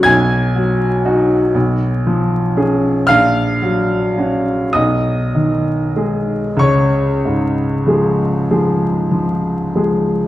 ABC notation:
X:1
M:6/8
L:1/8
Q:3/8=35
K:C#mix
V:1 name="Grand piano"
[gg']4 z2 | [ee']3 [dd']3 | [cc']4- [cc'] z |]
V:2 name="Grand piano" clef=bass
B,,, F, [DF] B,,, E, [CG] | A,,, F, [CF] B,,, D, [G,G] | C,, G,, [E,G,G] [E,G,G] E, [E,G,G] |]